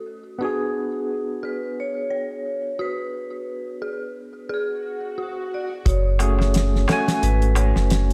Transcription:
Already playing: tine electric piano A3 C#4 F#4 G#5, synth bell F#4 A4
0.39 tine electric piano B3 D4 F#4, synth bell F#4, vibraphone G#4
0.45 tine electric piano G#4
1.43 synth bell G#4, vibraphone B4
1.80 vibraphone C#5
2.10 synth bell C#5
2.79 synth bell F#4, vibraphone B4
3.82 synth bell G#4
4.49 synth bell G#4, swell
4.54 vibraphone G#4
5.18 synth bell F#4
5.23 vibraphone F#4
5.54 vibraphone D5
5.86 sub bass F#1, synth bell F#4, vibraphone C#5, kick, closed hi-hat, darbuka tek
6.19 tine electric piano A3 C#4 F#4 G#4, closed hi-hat, darbuka tek
6.39 snare, darbuka tek
6.54 snare, closed hi-hat, darbuka tek
6.76 snare
6.88 tine electric piano A3 C#4 F#4, synth bell A4, snare, closed hi-hat, darbuka tek
6.93 tine electric piano G#5
7.08 snare, closed hi-hat, darbuka tek
7.22 sub bass G#1, vibraphone B4, closed hi-hat, darbuka tek
7.42 closed hi-hat
7.55 synth bell C#5, closed hi-hat, darbuka tek
7.76 sub bass F#1, snare, darbuka tek
7.90 snare, closed hi-hat, darbuka tek

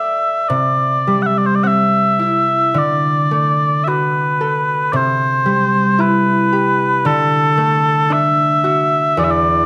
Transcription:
Already playing: harp A3 A4 D5 E5 F#5, bagpipes E5
0.48 harp C3, bagpipes D5
1.07 harp G3
1.22 bagpipes F#5
1.26 bagpipes E5
1.38 bagpipes D5
1.46 bagpipes C5
1.55 bagpipes D5
1.63 harp C4, bagpipes E5 F#5
2.19 harp E4
2.74 harp D3, bagpipes D5
3.31 harp A3
3.84 harp F#4, bagpipes E5
3.88 bagpipes B4
4.41 harp A4
4.93 harp C3, bagpipes C5 D5
5.46 harp G3
5.98 harp E4, bagpipes B4
6.53 harp G4
7.05 harp D3, bagpipes A4
7.57 harp A3
8.10 harp D4, bagpipes E5
8.64 harp F#4
9.17 harp E2, bagpipes D5
9.24 bagpipes E5
9.30 bagpipes D5

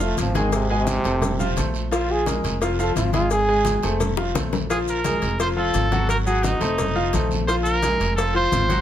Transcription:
Already playing: upright bass F1
0.00 grand piano F3 F4 F5, trombone A3, high conga, maracas
0.17 upright bass G#1, trombone F3, cowbell, high conga, short guiro, maracas
0.35 trombone D#3, grand piano G#3 G#4 G#5, cowbell, high conga, short guiro, maracas
0.52 trombone C3, cowbell, high conga, long guiro, maracas
0.69 trombone C3, grand piano G#3 G#4 G#5, high conga
0.87 cowbell, high conga, short guiro, maracas
1.04 upright bass F1, grand piano A3 A4 C5, cowbell, high conga, short guiro, maracas
1.21 cowbell, high conga, low conga, long guiro, maracas
1.39 grand piano F3 F4 F5, high conga, low conga, maracas
1.56 upright bass A#1, grand piano A3 A4 C5, cowbell, high conga, short guiro, maracas
1.74 short guiro, maracas
1.91 grand piano F3 F4 F5, trombone F4, cowbell, high conga, long guiro, maracas
2.09 trombone G#4, high conga
2.26 grand piano G#3 G#4 A#4, cowbell, high conga, short guiro, maracas
2.44 upright bass F1, cowbell, high conga, short guiro, maracas
2.61 grand piano F3 F4 F5, cowbell, high conga, long guiro, maracas
2.78 grand piano F3 F4 F5, trombone A4, high conga, maracas
2.96 upright bass G#1, trombone F4, cowbell, high conga, short guiro, maracas
3.13 grand piano G#3 G#4 G#5, trombone F4, cowbell, high conga, short guiro, maracas
3.31 trombone G#4, cowbell, high conga, long guiro, maracas
3.48 grand piano G#3 G#4 G#5, high conga
3.65 cowbell, high conga, short guiro, maracas
3.83 upright bass F1, grand piano A3 A4 C5, cowbell, high conga, short guiro, maracas
4.00 cowbell, high conga, low conga, long guiro, maracas
4.17 grand piano F3 F4 F5, high bongo, high conga
4.34 upright bass A#1, grand piano A3 A4 C5, cowbell, low bongo, high conga, short guiro, maracas
4.52 low bongo, high conga, short guiro, maracas
4.70 grand piano F3 F4 F5, trumpet G#4, cowbell, high conga, long guiro, maracas
4.87 trumpet A#4, high conga, maracas
5.04 grand piano G#3 G#4 A#4, cowbell, high conga, short guiro, maracas
5.22 upright bass F1, cowbell, high conga, short guiro, maracas
5.39 grand piano F3 F4 F5, trumpet C5, cowbell, high conga, long guiro, maracas
5.57 grand piano F3 F4 F5, trumpet A4, high conga
5.74 upright bass G#1, cowbell, high conga, short guiro, maracas
5.91 grand piano F#3 F#4 F#5, cowbell, high conga, short guiro, maracas
6.09 trumpet A#4, cowbell, high conga, long guiro, maracas
6.26 grand piano F#3 F#4 F#5, trumpet G#4, high conga, maracas
6.43 trumpet D#4, cowbell, high conga, short guiro, maracas
6.60 upright bass F1, grand piano A3 A4 C5, cowbell, high conga, short guiro, maracas
6.78 cowbell, high conga, low conga, long guiro, maracas
6.95 grand piano F3 F4 F5, high conga
7.13 upright bass A#1, grand piano A3 A4 C5, cowbell, high conga, short guiro, maracas
7.31 high conga, short guiro, maracas
7.47 grand piano F3 F4 F5, trumpet C5, cowbell, high conga, long guiro, maracas
7.64 trumpet A#4, high conga, maracas
7.82 grand piano G#3 G#4 A#4, cowbell, high conga, short guiro, maracas
8.00 upright bass F1, cowbell, high conga, short guiro, maracas
8.16 grand piano F3 F4 F5, trumpet A4, cowbell, high conga, long guiro, maracas
8.34 grand piano F3 F4 F5, trumpet C5, high conga
8.52 upright bass G#1, cowbell, high conga, short guiro, maracas
8.69 grand piano F#3 F#4 F#5, cowbell, high conga, short guiro, maracas

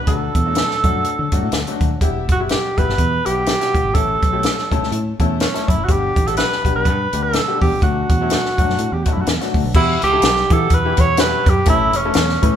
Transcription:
0.07 fingered electric bass D2, upright piano F#3 A3 D4 F#4, tenor saxophone A4, kick, closed hi-hat
0.35 fingered electric bass E2, kick, closed hi-hat
0.46 upright piano F#3 A3 D4 A4
0.55 snare, closed hi-hat
0.71 snare
0.83 fingered electric bass F#2, upright piano F#3 A3 D4 F#4, kick, closed hi-hat
0.95 fingered electric bass F#2
1.04 closed hi-hat
1.19 fingered electric bass D3
1.32 fingered electric bass G2, upright piano F#3 A3 D4 F#4, kick, closed hi-hat
1.43 fingered electric bass A2
1.52 fingered electric bass D2, snare, closed hi-hat
1.67 upright piano F#3 A3 D4 F#4, closed hi-hat
1.81 fingered electric bass D#2, kick, closed hi-hat
2.01 fingered electric bass E1, upright piano G3 B3 E4 G4, kick, closed hi-hat
2.29 fingered electric bass F#1, tenor saxophone F#4, kick, closed hi-hat
2.40 upright piano G3 B3 E4 G4
2.49 tenor saxophone G4, snare, closed hi-hat
2.77 fingered electric bass G1, upright piano G3 B3 E4 G4, tenor saxophone B4, kick, closed hi-hat
2.88 fingered electric bass G1, snare
2.98 fingered electric bass E2, kick, closed hi-hat
3.25 fingered electric bass B1, upright piano G3 B3 E4 G4, tenor saxophone G4, closed hi-hat
3.46 snare, closed hi-hat
3.60 upright piano G3 B3 E4 F#4, snare, closed hi-hat
3.75 fingered electric bass C#2, kick, closed hi-hat
3.85 fingered electric bass G#1
3.93 fingered electric bass A1, upright piano A3 C#4 E4 A4, tenor saxophone A4, kick, closed hi-hat
4.22 fingered electric bass B1, kick, closed hi-hat
4.33 upright piano A3 C#4 E4 G4
4.43 snare, closed hi-hat
4.58 snare
4.71 fingered electric bass C#2, upright piano A3 C#4 E4 A4, kick, closed hi-hat
4.81 fingered electric bass C#2, snare
4.91 fingered electric bass A2, closed hi-hat
5.19 fingered electric bass E2, upright piano A3 C#4 E4 A4, kick, closed hi-hat
5.40 tenor saxophone C#4, snare, closed hi-hat
5.54 upright piano A3 C#4 E4 A4, snare, closed hi-hat
5.68 fingered electric bass F#2, tenor saxophone E4, kick, closed hi-hat
5.78 fingered electric bass F#1
5.85 upright piano G3 B3 D4 G4, tenor saxophone F#4, kick, closed hi-hat
5.89 fingered electric bass G1, tenor saxophone G4
6.16 fingered electric bass A1, kick, closed hi-hat
6.27 upright piano G3 B3 D4 G4, tenor saxophone A4, closed hi-hat
6.37 tenor saxophone B4, snare, closed hi-hat
6.52 snare
6.65 fingered electric bass B1, upright piano G3 B3 D4 G4, kick, closed hi-hat
6.76 fingered electric bass B1, tenor saxophone B4
6.85 fingered electric bass G2, kick, closed hi-hat
7.13 fingered electric bass D2, upright piano G3 B3 D4 G4, closed hi-hat
7.23 tenor saxophone A4
7.33 snare, closed hi-hat
7.48 upright piano G3 B3 D4 G4
7.61 fingered electric bass E2, tenor saxophone G4, kick, open hi-hat
7.72 fingered electric bass C#2
7.82 fingered electric bass D2, upright piano F#3 A3 D4 F#4, tenor saxophone F#4, kick, closed hi-hat
8.10 fingered electric bass E2, kick, closed hi-hat
8.21 upright piano F#3 A3 D4 E4
8.30 snare, closed hi-hat
8.45 snare
8.58 fingered electric bass F#2, upright piano F#3 A3 D4 F#4, kick, closed hi-hat
8.69 fingered electric bass F#2, snare
8.78 fingered electric bass A2, closed hi-hat
8.92 fingered electric bass E2, tenor saxophone G4
9.04 upright piano F#3 A3 D4 A4, tenor saxophone F#4, kick, closed hi-hat
9.13 tenor saxophone E4
9.17 fingered electric bass F#2
9.21 tenor saxophone F#4
9.27 fingered electric bass E2, snare, closed hi-hat
9.40 upright piano F#3 A3 D4 F#4, snare, closed hi-hat
9.54 fingered electric bass D2, kick, open hi-hat
9.64 fingered electric bass B1
9.74 fingered electric bass E2, upright piano E3 G3 B3 E4 G4, tenor saxophone E4, kick, crash
10.02 fingered electric bass C#2, tenor saxophone G4, closed hi-hat
10.13 upright piano E3 G3 B3 E4 A4
10.22 fingered electric bass B1, snare, closed hi-hat
10.36 snare
10.50 fingered electric bass E3, upright piano E3 G3 B3 E4 G4, tenor saxophone A4, kick, closed hi-hat
10.70 fingered electric bass E2, kick, closed hi-hat
10.74 tenor saxophone B4
10.85 upright piano E3 G3 B3 E4 G4
10.97 fingered electric bass E2, tenor saxophone C#5, kick, closed hi-hat
11.17 upright piano E3 G3 B3 E4 G4, tenor saxophone B4, snare, closed hi-hat
11.46 fingered electric bass F#2, tenor saxophone G4, kick, closed hi-hat
11.65 fingered electric bass A1, upright piano E3 A3 C#4 E4 A4, tenor saxophone E4, kick, closed hi-hat
11.93 fingered electric bass E1, tenor saxophone C#4, closed hi-hat
12.05 upright piano E3 A3 C#4 E4 A4
12.13 fingered electric bass E2, snare, closed hi-hat
12.29 snare
12.42 fingered electric bass A2, upright piano E3 A3 C#4 E4 B4, kick, closed hi-hat

